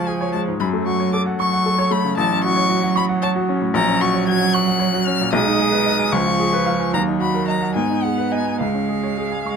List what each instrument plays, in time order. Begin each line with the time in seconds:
Already playing: grand piano C#2 G#3 F4 G#4 C#5 F5 C#6, cello F3
0.06 grand piano G#4, violin G#5
0.21 grand piano C#5
0.32 grand piano G#3, violin A5
0.48 grand piano G#2
0.60 grand piano F#2, cello F#3, violin B5
0.73 grand piano A3
0.86 grand piano F#4, violin C#6
1.00 grand piano C#5
1.13 grand piano A4, violin D6
1.26 grand piano F#5
1.39 cello F#3, violin C#6, grand piano C#6
1.53 grand piano F#5
1.66 grand piano A4
1.78 grand piano C#5
1.91 grand piano A3, violin B5
2.04 grand piano C#3
2.17 grand piano A1, cello F#3, violin A5
2.31 grand piano C#4
2.44 grand piano F#4, violin C#6
2.56 grand piano C#5
2.70 grand piano F#4
2.83 grand piano F#5
2.96 violin B5, grand piano C#6
3.09 grand piano F#5
3.22 grand piano C#5, violin A5
3.36 grand piano F#4
3.49 grand piano C#4
3.62 grand piano A2
3.74 grand piano A#1, cello F#3, violin A#5
3.88 grand piano C#4
4.01 grand piano F#4, violin C#6
4.14 grand piano C#5
4.27 grand piano F#4, violin G#6
4.41 grand piano F#5
4.53 grand piano C#6, violin F#6
4.68 grand piano F#5
4.79 grand piano C#5
4.94 grand piano F#4
5.07 grand piano C#4, violin F6
5.21 grand piano A#2
5.33 grand piano B1, cello G#3, violin D#6
5.46 grand piano D#4
5.59 grand piano G#4
5.72 grand piano B4
5.86 grand piano D#5
5.99 grand piano G#5
6.12 grand piano C#2, cello F3, violin C#6
6.26 grand piano F4
6.39 grand piano G#4
6.53 grand piano B4
6.66 grand piano F5
6.80 grand piano G#5
6.93 grand piano D#2, cello F#3, violin A#5
7.07 grand piano D#4
7.20 grand piano F#4, violin B5
7.34 grand piano A#4
7.47 grand piano D#5, violin A#5
7.62 grand piano F#5
7.75 grand piano G#2, cello B3, violin G#5
7.90 grand piano D#4
8.03 grand piano G#4, violin F#5
8.18 grand piano B4
8.32 grand piano D#5, violin G#5
8.45 grand piano G#5
8.60 grand piano C#2, cello G#3, violin F5
8.74 grand piano C#4
8.89 grand piano G#4
9.03 grand piano C#5
9.18 grand piano G#4
9.32 grand piano G#5
9.46 cello G#3, grand piano C#6